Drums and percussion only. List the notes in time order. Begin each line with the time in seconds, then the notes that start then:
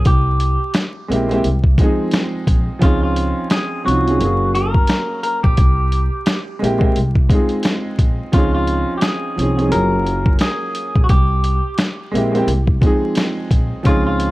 0.05 kick, closed hi-hat
0.40 closed hi-hat
0.74 finger snap, snare, closed hi-hat
1.12 closed hi-hat
1.31 closed hi-hat
1.44 closed hi-hat
1.64 kick
1.78 kick, closed hi-hat
2.11 finger snap, snare, closed hi-hat
2.47 kick, closed hi-hat
2.82 kick, closed hi-hat
3.16 closed hi-hat
3.50 finger snap, snare, closed hi-hat
3.88 closed hi-hat
4.08 closed hi-hat
4.21 closed hi-hat
4.55 closed hi-hat
4.74 kick
4.87 finger snap, snare, closed hi-hat
5.24 closed hi-hat
5.44 kick
5.57 kick, closed hi-hat
5.92 closed hi-hat
6.26 finger snap, snare, closed hi-hat
6.64 closed hi-hat
6.81 kick
6.96 closed hi-hat
7.16 kick
7.30 kick, closed hi-hat
7.49 closed hi-hat
7.63 finger snap, snare, closed hi-hat
7.99 kick, closed hi-hat
8.33 kick, closed hi-hat
8.67 closed hi-hat
9.01 finger snap, snare, closed hi-hat
9.39 closed hi-hat
9.59 closed hi-hat
9.72 closed hi-hat
10.06 closed hi-hat
10.26 kick
10.39 finger snap, snare, closed hi-hat
10.75 closed hi-hat
10.96 kick
11.09 kick, closed hi-hat
11.44 closed hi-hat
11.78 finger snap, snare, closed hi-hat
12.15 closed hi-hat
12.35 closed hi-hat
12.48 closed hi-hat
12.67 kick
12.82 kick, closed hi-hat
13.15 finger snap, snare, closed hi-hat
13.51 kick, closed hi-hat
13.85 kick, closed hi-hat
14.20 closed hi-hat